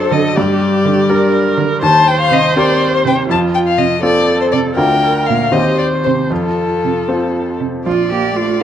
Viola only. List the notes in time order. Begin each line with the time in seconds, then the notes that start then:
Already playing: A4
0.37 G4
1.10 A#4
1.83 C5
3.30 F4
4.03 A4
4.77 A#4
5.54 C5
6.32 F4
7.86 F3
8.11 A#3
8.37 A3